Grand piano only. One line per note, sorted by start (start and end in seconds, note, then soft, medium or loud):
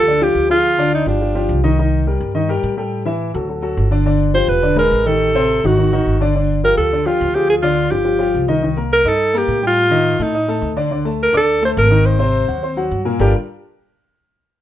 0.06 0.18 D3 medium
0.06 0.19 D4 medium
0.06 0.19 D5 medium
0.21 0.45 F3 medium
0.21 0.45 F4 medium
0.21 0.45 G4 medium
0.50 0.73 F3 medium
0.50 0.73 F4 medium
0.50 0.73 G#4 medium
0.78 1.02 D3 medium
0.78 1.02 D4 medium
0.78 1.02 D5 medium
1.07 1.18 F3 medium
1.07 1.19 F4 medium
1.07 1.19 G4 medium
1.21 1.33 F3 medium
1.21 1.33 F4 medium
1.21 1.33 G4 medium
1.35 1.58 F3 medium
1.35 1.59 F4 medium
1.35 1.59 G4 medium
1.64 1.75 D#3 medium
1.64 1.75 D#4 medium
1.64 1.76 D#5 medium
1.78 2.02 D#3 medium
1.78 2.02 D#4 medium
1.78 2.02 D#5 medium
2.07 2.30 G3 medium
2.07 2.30 G4 medium
2.07 2.30 A#4 medium
2.34 2.46 D#3 medium
2.34 2.47 D#4 medium
2.34 2.47 D#5 medium
2.49 2.72 G3 medium
2.49 2.73 G4 medium
2.49 2.73 A#4 medium
2.77 3.01 G3 medium
2.77 3.01 G4 medium
2.77 3.01 A4 medium
3.05 3.29 E3 medium
3.05 3.30 E4 medium
3.05 3.30 E5 medium
3.34 3.46 F#3 medium
3.34 3.47 F#4 medium
3.34 3.47 A4 medium
3.48 3.61 F#3 medium
3.48 3.61 F#4 medium
3.48 3.61 A4 medium
3.62 3.86 F#3 medium
3.62 3.86 F#4 medium
3.62 3.87 A4 medium
3.91 4.03 D3 medium
3.91 4.03 D4 medium
3.91 4.04 D5 medium
4.06 4.29 D3 medium
4.06 4.30 D4 medium
4.06 4.30 D5 medium
4.34 4.58 F3 medium
4.34 4.58 F4 medium
4.34 4.58 G4 medium
4.62 4.75 D3 medium
4.62 4.75 D4 medium
4.62 4.75 D5 medium
4.76 5.00 G#3 medium
4.76 5.00 G#4 medium
4.76 5.01 B4 medium
5.06 5.29 D#3 medium
5.06 5.29 D#4 medium
5.06 5.30 G4 medium
5.35 5.58 C3 medium
5.35 5.58 C4 medium
5.35 5.59 C5 medium
5.64 5.75 D#3 medium
5.64 5.75 D#4 medium
5.64 5.76 F#4 medium
5.77 5.89 D#3 medium
5.77 5.90 D#4 medium
5.77 5.90 F#4 medium
5.92 6.16 D#3 medium
5.92 6.16 D#4 medium
5.92 6.16 F#4 medium
6.21 6.32 D3 medium
6.21 6.32 D4 medium
6.21 6.33 D5 medium
6.35 6.58 D3 medium
6.35 6.58 D4 medium
6.35 6.59 D5 medium
6.64 6.87 F3 medium
6.64 6.87 F4 medium
6.64 6.87 G4 medium
6.92 7.04 D3 medium
6.92 7.04 D4 medium
6.92 7.04 D5 medium
7.06 7.29 F3 medium
7.06 7.30 F4 medium
7.06 7.30 G4 medium
7.35 7.58 F3 medium
7.35 7.59 F4 medium
7.35 7.59 G#4 medium
7.63 7.86 D3 medium
7.63 7.86 D4 medium
7.63 7.87 D5 medium
7.91 8.03 F3 medium
7.91 8.03 F4 medium
7.91 8.03 G4 medium
8.04 8.17 F3 medium
8.04 8.17 F4 medium
8.04 8.17 G4 medium
8.19 8.43 F3 medium
8.19 8.43 F4 medium
8.19 8.43 G4 medium
8.48 8.60 D#3 medium
8.48 8.60 D#4 medium
8.48 8.60 D#5 medium
8.62 8.74 D#3 medium
8.62 8.75 D#4 medium
8.62 8.75 D#5 medium
8.77 9.01 A#3 medium
8.77 9.00 A#4 medium
8.77 9.01 A#5 medium
9.05 9.29 D#4 medium
9.05 9.29 D#5 medium
9.05 9.29 D#6 medium
9.34 9.57 A#3 medium
9.34 9.58 A#4 medium
9.34 9.58 A#5 medium
9.62 9.86 G3 medium
9.62 9.86 G4 medium
9.62 9.86 G5 medium
9.90 10.14 D#3 medium
9.90 10.14 D#4 medium
9.90 10.15 D#5 medium
10.20 10.31 A3 medium
10.20 10.32 A4 medium
10.20 10.32 A5 medium
10.34 10.46 D#4 medium
10.34 10.46 D#5 medium
10.34 10.46 D#6 medium
10.48 10.72 A3 medium
10.48 10.72 A4 medium
10.48 10.72 A5 medium
10.76 10.88 D3 medium
10.76 10.88 D4 medium
10.76 10.89 D5 medium
10.91 11.03 D3 medium
10.91 11.03 D4 medium
10.91 11.03 D5 medium
11.05 11.29 A3 medium
11.05 11.29 A4 medium
11.05 11.29 A5 medium
11.33 11.57 D4 medium
11.33 11.57 D5 medium
11.33 11.57 D6 medium
11.62 11.86 A3 medium
11.62 11.86 A4 medium
11.62 11.86 A5 medium
11.90 12.14 D#3 medium
11.90 12.14 D#4 medium
11.90 12.14 D#5 medium
12.19 12.42 C3 medium
12.19 12.43 C4 medium
12.19 12.43 C5 medium
12.48 12.60 F#3 medium
12.48 12.59 F#4 medium
12.48 12.60 F#5 medium
12.63 12.74 C4 medium
12.63 12.74 C5 medium
12.63 12.75 C6 medium
12.77 13.00 F#3 medium
12.77 13.00 F#4 medium
12.77 13.00 F#5 medium
13.05 13.17 A#2 medium
13.05 13.17 A#3 medium
13.05 13.17 A#4 medium
13.19 13.32 G3 medium
13.19 13.33 D4 medium
13.19 13.33 F4 medium
13.19 13.33 G4 medium
13.19 13.33 A4 medium
13.19 13.33 A#4 medium